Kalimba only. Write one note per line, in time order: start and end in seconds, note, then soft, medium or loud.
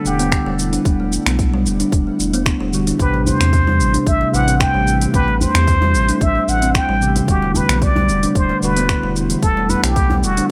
0.19 0.31 B3 loud
0.46 0.54 G3 loud
0.73 0.85 D4 medium
1.00 1.12 A3 medium
1.27 1.34 B3 medium
1.54 1.61 G3 loud
1.80 1.92 D4 medium
2.07 2.19 A3 medium
2.34 2.46 B3 loud
2.60 2.68 G3 loud
2.87 2.99 D4 medium
3.14 3.26 A3 medium
3.41 3.48 C4 medium
3.67 3.75 G3 loud
3.94 4.06 D4 medium
4.21 4.33 A3 medium
4.48 4.60 C4 loud
4.74 4.82 G3 loud
5.01 5.27 E3 medium
5.28 5.40 A3 medium
5.55 5.62 C4 medium
5.82 5.89 G3 loud
6.09 6.21 D4 medium
6.35 6.48 A3 medium
6.62 6.74 C4 loud
6.89 6.96 G3 loud
7.15 7.28 E3 medium
7.43 7.55 A3 medium
7.69 7.77 B3 medium
7.96 8.04 G3 loud
8.23 8.35 D4 medium
8.50 8.62 A3 medium
8.77 8.89 B3 loud
9.03 9.11 G3 loud
9.30 9.56 E3 medium
9.57 9.69 A3 medium
9.84 9.91 B3 medium
10.11 10.18 G3 loud
10.37 10.50 D4 medium